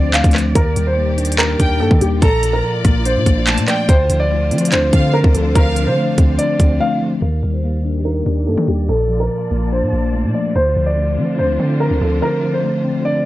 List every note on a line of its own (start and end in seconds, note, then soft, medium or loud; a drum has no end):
0.00 0.23 D2 loud
0.00 0.52 D3 medium
0.00 0.57 D3 medium
0.00 0.34 F3 medium
0.00 0.13 A3 medium
0.00 0.57 C4 loud
0.00 0.57 D4 medium
0.00 0.51 F4 medium
0.00 0.52 C5 medium
0.00 0.11 D5 loud
0.00 2.18 D5 medium
0.14 0.56 A3 medium
0.14 0.32 F5 medium
0.14 clap loud
0.14 closed hi-hat medium
0.24 0.54 D2 loud
0.24 kick loud
0.24 closed hi-hat medium
0.31 0.55 F3 medium
0.31 cross-stick loud
0.31 clap medium
0.31 closed hi-hat medium
0.38 closed hi-hat medium
0.55 0.75 D#2 loud
0.55 3.85 A#2 medium
0.55 2.20 D#3 medium
0.55 1.60 D#3 medium
0.55 2.20 G4 medium
0.55 0.85 A#4 loud
0.55 kick loud
0.55 closed hi-hat medium
0.76 1.56 D#2 loud
0.76 1.81 G3 medium
0.76 closed hi-hat medium
0.87 1.36 C5 medium
0.97 1.79 A#3 medium
1.18 1.59 D4 medium
1.18 closed hi-hat medium
1.25 closed hi-hat medium
1.32 closed hi-hat medium
1.38 2.22 D#4 medium
1.38 1.78 A#4 loud
1.38 clap loud
1.38 closed hi-hat medium
1.60 1.82 D#2 loud
1.60 2.22 D4 medium
1.60 1.80 G5 medium
1.60 kick medium
1.60 closed hi-hat medium
1.80 1.90 G2 loud
1.80 2.22 A#3 medium
1.80 1.99 A4 medium
1.91 2.01 D#3 loud
1.91 kick loud
2.01 2.21 D#2 loud
2.01 2.22 G3 medium
2.01 2.20 G4 medium
2.01 closed hi-hat medium
2.22 2.62 A#1 loud
2.22 3.26 A#2 medium
2.22 7.18 F4 medium
2.22 2.52 A4 loud
2.22 3.87 D5 medium
2.22 2.61 A#5 loud
2.22 kick loud
2.22 closed hi-hat medium
2.43 3.47 F3 medium
2.43 closed hi-hat medium
2.53 3.02 A#4 medium
2.84 3.17 A#1 loud
2.84 3.25 A#3 medium
2.84 kick loud
2.84 cross-stick medium
2.84 closed hi-hat medium
3.05 3.89 D4 medium
3.05 3.64 C5 medium
3.05 closed hi-hat medium
3.16 3.26 A#2 loud
3.26 3.59 A#1 loud
3.26 3.89 A#3 medium
3.26 kick medium
3.26 closed hi-hat medium
3.47 3.89 A3 medium
3.47 3.67 A5 medium
3.47 clap loud
3.47 closed hi-hat medium
3.58 3.67 A#2 loud
3.58 closed hi-hat medium
3.68 3.89 F3 medium
3.68 3.86 D5 medium
3.68 3.88 G5 medium
3.68 cross-stick loud
3.68 clap medium
3.68 closed hi-hat medium
3.88 4.09 D2 loud
3.88 4.93 D3 medium
3.88 7.19 D3 medium
3.88 7.19 D4 medium
3.88 4.18 C5 loud
3.88 7.19 C5 medium
3.88 kick loud
3.88 closed hi-hat medium
4.10 4.53 D2 loud
4.10 5.14 F3 medium
4.10 closed hi-hat medium
4.20 4.69 D5 loud
4.30 5.35 A3 medium
4.51 4.74 F3 loud
4.51 4.92 C4 loud
4.51 closed hi-hat soft
4.58 closed hi-hat medium
4.65 closed hi-hat medium
4.72 4.92 D2 loud
4.72 5.76 D4 medium
4.72 5.11 C5 medium
4.72 clap loud
4.72 closed hi-hat medium
4.93 5.23 D3 loud
4.93 5.97 C4 medium
4.93 5.13 F5 medium
4.93 kick medium
4.93 closed hi-hat medium
5.14 5.32 A#4 medium
5.24 5.34 D2 loud
5.24 kick loud
5.34 5.55 D2 loud
5.34 5.75 F3 medium
5.34 5.53 A4 medium
5.34 closed hi-hat medium
5.55 5.88 D2 loud
5.55 6.60 D3 medium
5.55 5.85 A#4 loud
5.55 5.94 F5 medium
5.55 kick loud
5.55 closed hi-hat medium
5.76 6.80 F3 medium
5.76 closed hi-hat medium
5.87 5.97 D3 loud
5.87 6.36 C5 medium
5.97 6.79 A3 medium
6.18 6.38 D2 loud
6.18 6.58 C4 loud
6.18 kick loud
6.18 closed hi-hat medium
6.38 7.22 D4 medium
6.38 6.78 D5 loud
6.38 closed hi-hat medium
6.59 6.80 D2 loud
6.59 7.22 C4 medium
6.59 kick medium
6.59 closed hi-hat medium
6.80 7.22 A3 medium
6.80 6.99 F5 medium
7.01 7.22 F3 medium
7.22 7.42 D#2 loud
7.22 8.87 D#3 medium
7.22 8.27 D#3 medium
7.22 8.87 A#3 medium
7.22 8.87 G4 medium
7.22 7.52 A#4 loud
7.22 10.52 D5 medium
7.43 8.23 D#2 loud
7.43 8.47 G3 medium
7.53 8.02 C5 medium
7.63 8.46 A#3 medium
7.85 8.25 D4 medium
8.05 8.89 D#4 medium
8.05 8.44 A#4 medium
8.26 8.49 D#2 loud
8.26 8.89 D4 medium
8.47 8.57 G2 loud
8.47 8.89 A#3 medium
8.47 8.65 A4 medium
8.58 8.67 D#3 loud
8.68 8.88 D#2 loud
8.68 8.89 G3 medium
8.68 8.86 G4 medium
8.89 9.29 A#1 loud
8.89 10.54 A#2 medium
8.89 9.93 A#2 medium
8.89 10.54 F4 medium
8.89 9.18 A4 loud
8.89 10.54 A5 medium
9.09 10.14 F3 medium
9.20 9.69 A#4 medium
9.51 9.84 A#1 loud
9.51 9.92 A#3 medium
9.72 10.56 D4 medium
9.72 10.31 C5 medium
9.82 9.92 A#2 loud
9.93 10.26 A#1 loud
9.93 10.55 A#3 medium
10.14 10.55 A3 medium
10.24 10.34 A#2 loud
10.34 10.55 F3 medium
10.34 10.53 D5 medium
10.55 10.75 D2 loud
10.55 11.59 D3 medium
10.55 13.25 D3 medium
10.55 13.25 D4 medium
10.55 13.25 F4 medium
10.55 13.25 C5 medium
10.55 10.85 C5 loud
10.76 11.19 D2 loud
10.76 11.81 F3 medium
10.86 11.35 D5 medium
10.97 12.01 A3 medium
11.18 11.40 F3 medium
11.18 11.58 C4 medium
11.39 11.59 D2 loud
11.39 12.43 D4 medium
11.39 11.78 C5 medium
11.60 11.90 D3 loud
11.60 12.64 C4 medium
11.80 11.99 A#4 medium
11.91 12.01 D2 loud
12.01 12.21 D2 loud
12.01 12.42 F3 medium
12.01 12.20 A4 medium
12.22 13.25 D3 medium
12.22 12.52 A#4 medium
12.43 13.25 F3 medium
12.53 13.02 C5 medium
12.64 13.25 A3 medium
12.85 13.24 C4 loud
13.05 13.25 D4 medium
13.05 13.25 D5 loud